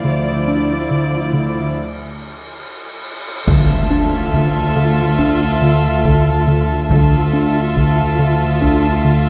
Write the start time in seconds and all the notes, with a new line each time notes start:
0.05 D2 D3 F3 E4 D5, cymbal swell
0.48 D4
0.91 D3
1.33 D3
3.47 D2 D3 F4 A4 E5, taiko, impact
3.91 D4
4.33 D3, taiko
4.76 D3
5.19 D4, taiko
5.62 D3
6.05 D3, taiko
6.48 D3
6.90 D2 D3 F4 A4 E5, taiko
7.33 D4
7.76 D3, taiko
8.19 D3
8.61 D4, taiko
9.05 D3